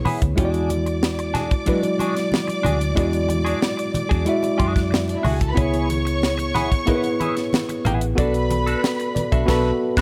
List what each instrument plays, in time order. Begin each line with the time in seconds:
Already playing: tine electric piano B3 E4 G#4 C#5
0.05 clean electric guitar B3 E4 G#4, open hi-hat, high conga, low conga
0.22 fingered electric bass D2, muted clean electric guitar stroke, kick, closed hi-hat
0.36 fingered electric bass E2, tine electric piano G#3 E4 F#4 C#5, clean electric guitar C#4 F4 G4, string section D5 D6, kick, closed hi-hat, muted conga, low conga
0.45 tine electric piano D5
0.50 clean electric guitar D4 F#4 G#4, closed hi-hat, muted conga
0.69 closed hi-hat, high conga
0.86 muted clean electric guitar stroke, closed hi-hat
1.03 snare
1.19 muted clean electric guitar stroke, closed hi-hat
1.34 clean electric guitar D4 F#4 G#4, snare, closed hi-hat, high conga, low conga
1.51 muted clean electric guitar stroke, kick, closed hi-hat
1.66 tine electric piano F#3 E4 F#4 D5, clean electric guitar D4 F#4 B4, kick, closed hi-hat
1.72 tine electric piano G#3
1.83 muted clean electric guitar stroke, closed hi-hat, muted conga
1.99 clean electric guitar D4 F#4 G#4, closed hi-hat, high conga
2.17 snare, closed hi-hat
2.32 snare, muted conga, high conga
2.47 muted clean electric guitar stroke, closed hi-hat, muted conga
2.63 fingered electric bass D2, clean electric guitar D4 F#4 G#4, closed hi-hat, high conga, low conga
2.80 muted clean electric guitar stroke, closed hi-hat
2.95 fingered electric bass E2, tine electric piano G#3 E4 F#4 D5, clean electric guitar D4 F#4 G#4, kick, closed hi-hat, low conga
3.12 muted clean electric guitar stroke, closed hi-hat, muted conga
3.28 muted clean electric guitar stroke, closed hi-hat, high conga
3.45 clean electric guitar D4 F#4 G#4, closed hi-hat
3.61 muted clean electric guitar stroke, snare, muted conga
3.77 muted clean electric guitar stroke, closed hi-hat
3.94 muted fingered electric bass stroke, closed hi-hat, high conga, low conga
4.09 fingered electric bass E2, clean electric guitar D4 F#4 G#4, kick, closed hi-hat
4.25 tine electric piano G#3 E4 F#4 E5, muted clean electric guitar stroke, closed hi-hat
4.43 muted clean electric guitar stroke, closed hi-hat, muted conga
4.58 fingered electric bass F#2, clean electric guitar D4 F#4 G#4, kick, closed hi-hat, high conga
4.75 muted clean electric guitar stroke, kick, snare, closed hi-hat
4.90 muted clean electric guitar stroke, snare, high conga
5.08 string section D4 D5, closed hi-hat, muted conga
5.16 string section E4 E5
5.23 fingered electric bass C#2, clean electric guitar D4 F#4 G#4, string section F#4 F#5, open hi-hat, high conga, low conga
5.33 string section G#4 G#5
5.40 string section A4 A5, muted clean electric guitar stroke, kick, closed hi-hat
5.49 string section B4 B5
5.55 fingered electric bass C#2, tine electric piano B3 E4 G#4 C#5, clean electric guitar B3 E4 G#4, string section C#5 C#6, kick, closed hi-hat, low conga
5.74 closed hi-hat, muted conga
5.90 closed hi-hat, high conga
6.05 muted clean electric guitar stroke, closed hi-hat
6.22 snare, muted conga
6.38 muted clean electric guitar stroke, closed hi-hat, muted conga
6.55 clean electric guitar B3 E4 G#4, snare, closed hi-hat, high conga, low conga
6.71 muted clean electric guitar stroke, kick, closed hi-hat
6.86 tine electric piano B3 E4 G#4 B4, clean electric guitar B3 E4 B4, kick, closed hi-hat, muted conga
7.03 muted clean electric guitar stroke, closed hi-hat, muted conga
7.20 clean electric guitar B3 E4 G#4, closed hi-hat, high conga
7.37 snare, closed hi-hat
7.53 snare, muted conga, high conga
7.69 muted clean electric guitar stroke, closed hi-hat, muted conga
7.85 fingered electric bass A1, clean electric guitar B3 E4 G#4, closed hi-hat, high conga, low conga
8.01 muted clean electric guitar stroke, closed hi-hat
8.15 fingered electric bass B1, tine electric piano B3 F#4 A4 D5, clean electric guitar D4 F#4, string section B4 B5, kick, closed hi-hat, muted conga, low conga
8.20 clean electric guitar A4
8.34 muted clean electric guitar stroke, closed hi-hat
8.50 muted clean electric guitar stroke, closed hi-hat, high conga
8.66 clean electric guitar D4 F#4 A4, closed hi-hat
8.84 snare, muted conga
8.99 muted clean electric guitar stroke, closed hi-hat
9.15 tine electric piano D5, muted fingered electric bass stroke, closed hi-hat, high conga, low conga
9.32 fingered electric bass B1, clean electric guitar D4 F#4 A4, tine electric piano E5, kick, closed hi-hat
9.46 fingered electric bass B1, tine electric piano B3 F#4 A4 B4, clean electric guitar F#4 A4, string section B4 B5, kick, snare, crash
9.50 clean electric guitar D4
9.97 fingered electric bass B1, clean electric guitar D4, string section B4 B5, kick, snare, crash